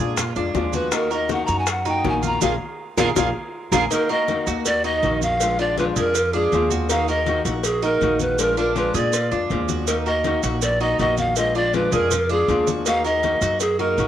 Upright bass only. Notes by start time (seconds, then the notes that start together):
0.00 A#2
0.36 F2
0.55 D#2
1.48 F#2
2.04 A#1
2.42 A#1
2.97 A#1
3.16 A#1
3.72 A#1
4.47 D#2
5.03 A#1
5.96 F2
6.52 D#2
7.45 A#1
8.01 A#1
8.94 A#2
9.32 F2
9.50 D#2
10.43 A#1
10.99 A#1
11.92 F2
12.48 D#2
13.42 F#2
13.98 A#1